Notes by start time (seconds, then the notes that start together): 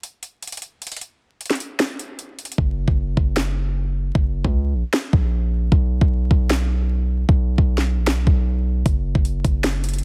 0.03 closed hi-hat
0.23 closed hi-hat
0.43 closed hi-hat
0.47 closed hi-hat
0.52 closed hi-hat
0.57 closed hi-hat
0.62 closed hi-hat
0.82 closed hi-hat
0.87 closed hi-hat
0.92 closed hi-hat
0.96 closed hi-hat
1.01 closed hi-hat
1.41 closed hi-hat
1.46 closed hi-hat
1.50 snare, closed hi-hat
1.55 closed hi-hat
1.60 closed hi-hat
1.79 finger snap, snare, closed hi-hat
1.99 closed hi-hat
2.19 closed hi-hat
2.39 closed hi-hat
2.45 closed hi-hat
2.52 closed hi-hat
2.58 F#1, kick
2.88 F#1, kick
3.17 F#1, kick
3.36 finger snap, snare
4.15 F#1, kick
4.45 C#2, kick
4.74 A#1
4.93 finger snap, snare
5.13 A#1, kick
5.72 B1, kick
6.01 B1, kick
6.31 B1, kick
6.50 finger snap, snare
7.29 B1, kick
7.58 B1, kick
7.78 snare
7.97 A#1
8.07 finger snap, snare
8.12 B1
8.27 B1, kick
8.86 F#1, kick, closed hi-hat
9.15 F#1, kick
9.25 closed hi-hat
9.45 F#1, kick, closed hi-hat
9.64 finger snap, snare, closed hi-hat
9.84 closed hi-hat
9.89 closed hi-hat
9.94 closed hi-hat
9.98 closed hi-hat